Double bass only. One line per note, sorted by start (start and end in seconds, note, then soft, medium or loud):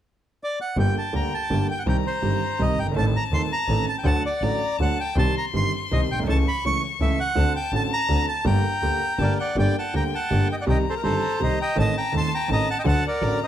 0.77 0.92 G1 medium
1.14 1.29 D2 soft
1.51 1.66 G1 medium
1.86 2.02 C2 medium
2.23 2.39 G1 soft
2.60 2.75 C2 medium
2.77 2.94 G1 medium
2.95 3.11 A1 medium
3.31 3.47 D#2 soft
3.68 3.84 A1 medium
4.04 4.20 D2 medium
4.41 4.57 A1 soft
4.79 4.95 D2 medium
5.16 5.32 C2 medium
5.54 5.70 G1 soft
5.92 6.07 C2 medium
6.10 6.28 B1 medium
6.28 6.43 C#2 medium
6.64 6.79 C#2 soft
7.00 7.15 C#2 medium
7.37 7.52 D2 medium
7.72 7.87 A1 soft
8.09 8.24 D2 medium
8.45 8.60 G1 medium
8.82 8.97 D2 soft
9.19 9.34 G1 medium
9.56 9.72 G1 medium
9.94 10.09 D2 soft
10.31 10.46 G1 medium
10.68 10.83 C2 medium
11.06 11.20 G1 soft
11.42 11.56 C2 medium
11.77 11.92 A1 medium
12.14 12.29 D#2 soft
12.50 12.65 A1 medium
12.86 13.01 D2 medium
13.22 13.37 A1 soft